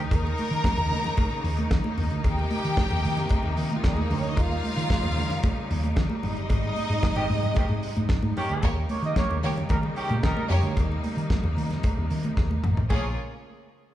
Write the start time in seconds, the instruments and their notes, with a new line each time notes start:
Already playing: string section D#3 D#4
0.11 fingered electric bass D#2, string section C#3 A#3, violin section A#4 A#5, kick, closed hi-hat, cowbell, muted conga
0.27 muted conga
0.38 open hi-hat, high conga
0.51 fingered electric bass D#3, closed hi-hat
0.64 kick, snare, closed hi-hat, cowbell, muted conga, high conga
0.77 fingered electric bass D#2, muted conga, low conga
0.91 fingered electric bass D#3, open hi-hat, high conga
1.04 snare, closed hi-hat, low conga
1.17 kick, closed hi-hat, cowbell, muted conga, high conga
1.31 muted conga
1.44 fingered electric bass D#2, open hi-hat
1.57 closed hi-hat, high conga
1.71 fingered electric bass D#3, kick, snare, closed hi-hat, cowbell, muted conga
1.84 muted conga, high conga
1.98 fingered electric bass D#2, open hi-hat, low conga
2.11 fingered electric bass D2, closed hi-hat
2.24 fingered electric bass D#2, string section C3, violin section G4 G5, kick, closed hi-hat, cowbell, muted conga
2.39 muted conga
2.51 open hi-hat, high conga
2.65 fingered electric bass D#3, closed hi-hat
2.77 kick, snare, closed hi-hat, cowbell, high conga
2.91 fingered electric bass D#2, muted conga, low conga
3.04 fingered electric bass D#3, open hi-hat, high conga
3.17 snare, closed hi-hat, low conga
3.29 kick, closed hi-hat, cowbell, high conga
3.43 fingered electric bass D#2, muted conga
3.57 fingered electric bass D#3, open hi-hat
3.70 closed hi-hat, high conga
3.75 violin section F4
3.84 fingered electric bass D#2, violin section G3 G4, kick, snare, closed hi-hat, cowbell, muted conga
3.94 violin section G#3 G#4, high conga
4.03 violin section A#3 A#4
4.11 fingered electric bass D2, violin section C4 C5, open hi-hat, low conga
4.19 violin section C#4 C#5, closed hi-hat
4.29 violin section D#4 D#5
4.37 fingered electric bass D#2, string section C#3 G3, violin section F4 F5, kick, closed hi-hat, cowbell
4.51 muted conga
4.64 open hi-hat, high conga
4.77 fingered electric bass D#3, closed hi-hat
4.90 kick, snare, closed hi-hat, cowbell, high conga
5.04 fingered electric bass D#2, muted conga, low conga
5.17 fingered electric bass D#3, open hi-hat, high conga
5.30 snare, closed hi-hat, low conga
5.43 kick, closed hi-hat, cowbell, muted conga, high conga
5.71 fingered electric bass D#2, open hi-hat
5.84 closed hi-hat, high conga
5.96 fingered electric bass D#3, kick, snare, closed hi-hat, cowbell, muted conga
6.10 muted conga, high conga
6.23 fingered electric bass G#1, string section C3 G#3, violin section D#4 D#5, open hi-hat, low conga
6.37 fingered electric bass G1, closed hi-hat
6.50 fingered electric bass G#1, kick, closed hi-hat, cowbell, muted conga
6.64 muted conga
6.76 open hi-hat, high conga
6.89 fingered electric bass G#2, closed hi-hat
7.03 kick, snare, closed hi-hat, cowbell, high conga
7.16 fingered electric bass G#1, horn section D#3 C4 G4, muted conga, low conga
7.29 fingered electric bass G#2, open hi-hat, high conga
7.43 closed hi-hat, low conga
7.55 horn section D#3 C4 G4, kick, closed hi-hat, cowbell, high conga
7.69 fingered electric bass G#2, muted conga
7.83 open hi-hat
7.96 fingered electric bass G#2, closed hi-hat, high conga
8.09 kick, snare, closed hi-hat, cowbell, muted conga
8.23 fingered electric bass G#2, muted conga, high conga
8.37 horn section D#3 C#4 G4, open hi-hat, low conga
8.49 fingered electric bass D2, closed hi-hat
8.62 fingered electric bass D#2, string section C#3 G3 A#3 D#4, violin section A#3 G4 C#5, kick, closed hi-hat, cowbell, muted conga
8.89 horn section A#3 G4 C#5, open hi-hat, high conga
9.02 fingered electric bass D#3, horn section A#3 G4 D#5, closed hi-hat
9.16 horn section A#3 G4 C#5, kick, snare, closed hi-hat, cowbell, muted conga, high conga
9.30 fingered electric bass D#2, low conga
9.43 fingered electric bass D#3, violin section A#3 G4 C#5, open hi-hat, high conga
9.56 closed hi-hat, low conga
9.69 fingered electric bass D#3, horn section G3 D#4 A#4, kick, closed hi-hat, cowbell, muted conga, high conga
9.83 muted conga
9.96 horn section D#3 C#4 G4, open hi-hat
10.09 fingered electric bass A#2, closed hi-hat, high conga
10.23 fingered electric bass D#3, horn section G3 D#4 A#4, kick, snare, closed hi-hat, cowbell
10.37 muted conga, high conga
10.50 fingered electric bass F2, violin section A#3 G4 C#5, open hi-hat, low conga
10.62 fingered electric bass D2, closed hi-hat
10.77 fingered electric bass D#2, string section C3, kick, closed hi-hat, cowbell, muted conga
10.92 muted conga
11.04 open hi-hat, high conga
11.17 fingered electric bass D#3, closed hi-hat
11.30 kick, snare, closed hi-hat, cowbell, high conga
11.44 fingered electric bass D#2, muted conga, low conga
11.57 fingered electric bass D#3, open hi-hat, high conga
11.70 snare, closed hi-hat, low conga
11.83 kick, closed hi-hat, cowbell, muted conga, high conga
11.97 fingered electric bass D#2
12.10 fingered electric bass D#3, open hi-hat
12.23 closed hi-hat, high conga
12.37 fingered electric bass D#2, kick, snare, cowbell
12.51 muted conga, high conga
12.64 fingered electric bass A1, mid tom, low conga
12.77 floor tom
12.90 fingered electric bass A#1, string section C#3 G#3 A#3 F4, horn section F3 C#4 G#4, violin section A#3 G#4 C#5, kick, crash, cowbell, high conga